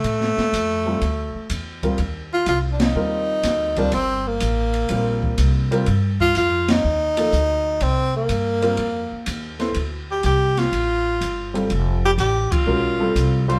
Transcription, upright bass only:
X:1
M:4/4
L:1/8
Q:"Swing" 1/4=124
K:Cdor
V:1 name="Upright bass" clef=bass
A,, z F,,2 D,, z =E,,2 | E,,2 C,,2 E,,2 D,,2 | G,,,2 A,,,2 B,,,2 C,,2 | G,,2 F,,2 E,,2 D,,2 |
C,,2 G,,2 F,, z E,,2 | D,,2 C,,2 A,,,2 G,,,2 | F,,,2 A,,, z =B,,,2 C,,2 |]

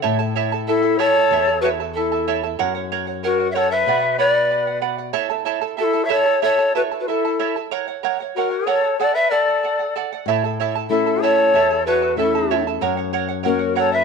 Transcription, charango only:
X:1
M:2/4
L:1/16
Q:1/4=94
K:Amix
V:1 name="Charango"
[EAcea] [EAa] [EAcea] [EAa] [EAea] [EAa] [EAcea] [EAa] | [EAcea] [EAa] [EAcea] [EAa] [EAea] [EAa] [EAcea] [EAa] | [^Acf] [cf] [Acf] [cf] [Acf] [cf] [Acf] [cf] | [Bdf] [df] [Bdf] [df] [Bdf] [df] [Bdf] [df] |
[EAcea] [EAa] [EAcea] [EAa] [EAea] [EAa] [EAcea] [EAa] | [EAcea] [EAa] [EAcea] [EAa] [EAea] [EAa] [EAcea] [EAa] | [^Acf] [cf] [Acf] [cf] [Acf] [cf] [Acf] [cf] | [Adf] [df] [Adf] [df] [Adf] [df] [Adf] [df] |
[EAcea] [EAa] [EAcea] [EAa] [EAea] [EAa] [EAcea] [EAa] | [EAcea] [EAa] [EAcea] [EAa] [EAea] [EAa] [EAcea] [EAa] | [^Acf] [cf] [Acf] [cf] [Acf] [cf] [Acf] [cf] |]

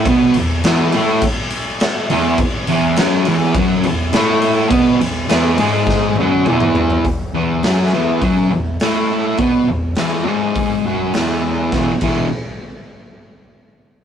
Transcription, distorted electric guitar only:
X:1
M:4/4
L:1/8
Q:1/4=103
K:E
V:1 name="Distorted electric guitar" clef=bass
[B,,B,] E,, [E,,E,] [A,,A,] z3 [E,,E,] | z [E,,E,] [F,,F,] [E,,E,] [F,,F,] E,, [A,,A,]2 | [B,,B,] E,, [E,,E,] [G,,G,]2 [F,,F,] [E,,E,]2 | z [E,,E,] [F,,F,] [E,,E,] [F,,F,] E,, [A,,A,]2 |
[B,,B,] E,, [E,,E,] [G,,G,]2 [F,,F,] [E,,E,]2 | [E,,B,,E,] [E,,B,,E,] z6 |]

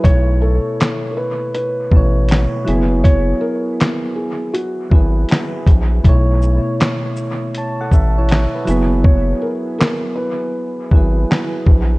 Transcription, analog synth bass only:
X:1
M:4/4
L:1/16
Q:"Swing 16ths" 1/4=80
K:F#phr
V:1 name="Analog synth bass" clef=bass
B,,,3 z6 z A,,,3 z F,,,2- | F,,,2 z8 ^G,,,2 z2 ^A,,,2 | B,,,3 z6 z A,,,3 z F,,,2- | F,,,2 z8 ^G,,,2 z2 ^A,,,2 |]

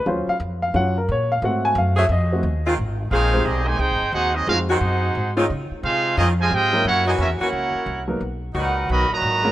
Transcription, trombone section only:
X:1
M:4/4
L:1/8
Q:"Swing" 1/4=177
K:Abmix
V:1 name="Trombone section"
z8 | z8 | [K:Ab] z2 [A,CF]2 [G,CE] [C,E,A,] [CEA]2 | [CE_G] [_G,CE] F [CEG]4 z |
z2 [A,CF]2 [A,CE] [C,F,A,] [A,CG]2 | [B,D_G] E [B,D_F] [B,DG]4 z | z2 [^A,,^D^F]2 [^D,^F,=B,] [A,,D,F,]3 |]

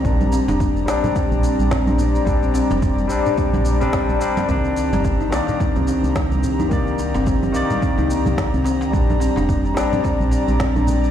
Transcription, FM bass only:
X:1
M:4/4
L:1/16
Q:"Swing 16ths" 1/4=108
K:Bbmix
V:1 name="FM bass" clef=bass
B,,,2 z F,,,3 B,,, z2 B,,, z B,,, z B,,,2 z | B,,,2 z F,,,3 B,,, z2 B,,,2 G,,, z B,,, z2 | C,,2 z G,,,3 C,, z2 C,, z C,, z C,,2 z | C,,2 z G,,,3 C,, z2 C,, z C,, z C,,2 z |
B,,,2 z F,,,3 B,,, z2 B,,, z B,,, z B,,,2 z |]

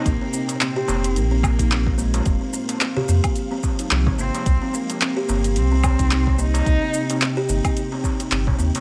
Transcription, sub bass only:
X:1
M:4/4
L:1/8
Q:"Swing 16ths" 1/4=109
K:Cm
V:1 name="Sub bass" clef=bass
B,,, z2 F,,, B,,,4 | F,,, z2 F,, z2 C,, A,,, | C,, z2 G,,, C,,4 | C,, z2 G,,, z2 G,,, E,, |]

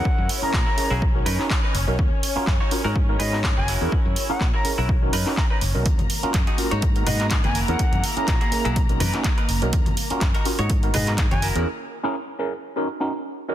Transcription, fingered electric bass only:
X:1
M:4/4
L:1/16
Q:"Swing 16ths" 1/4=124
K:Gb
V:1 name="Fingered electric bass" clef=bass
z G,, z2 B,, z2 C,,3 ^F,, z3 ^F,,, =B,,, | E,, z3 G,, z2 A,,3 A,,3 G,,,2 _F,, | z G,, z2 B,, z2 C,,3 ^F,, z3 ^F,,, =B,,, | z4 G,, z2 A,,3 A,,3 G,,,2 _F,, |
z G,, z2 B,, z2 C,,3 ^F,, z3 ^F,,, =B,,, | E,, z3 G,, z2 A,,3 A,,3 G,,,2 _F,, | z16 |]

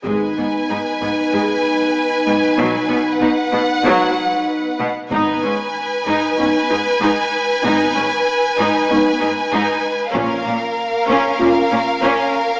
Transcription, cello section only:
X:1
M:4/4
L:1/8
Q:1/4=96
K:G#dor
V:1 name="Cello section" clef=bass
G,, G,, G,, G,, G,, z2 G,, | B,, B,, B,, B,, B,, z2 B,, | G,, G,, z G,, G,, G,, G,, z | G,, G,, z G,, G,, G,, G,, z |
A,, A,, z A,, A,, A,, A,, z |]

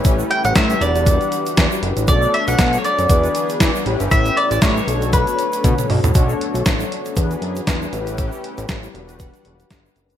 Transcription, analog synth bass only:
X:1
M:4/4
L:1/16
Q:"Swing 16ths" 1/4=118
K:Bm
V:1 name="Analog synth bass" clef=bass
A,,,2 z A,,, A,,2 E,,,4 z2 E,, z F,,, A,,, | B,,,2 z B,,, B,,2 z F,, E,,2 z2 E, z A,,, G,,, | A,,,2 z A,,, A,,2 B,,,4 z2 B,, z B,,, A,,, | B,,,2 z B,,, A,,,2 z2 E,,2 F,,2 E,,2 A,,,2- |
A,,,2 z A,,, A,,,2 E,,,4 E,,,2 G,,,2 F,,,2 |]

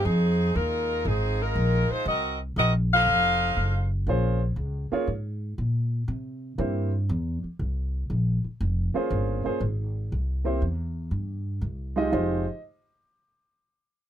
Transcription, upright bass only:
X:1
M:4/4
L:1/8
Q:"Swing" 1/4=119
K:Fm
V:1 name="Upright bass" clef=bass
F,,2 E,,2 A,,,2 B,,, z | C,,2 B,,,2 F,,,2 _G,,,2 | B,,,2 D,, z A,,2 B,,2 | C,2 G,,2 =E,, z C,,2 |
B,,, z F,,, z G,,, z A,,,2 | C,,2 =E,,2 G,,2 C,,2 | F,,, z6 z |]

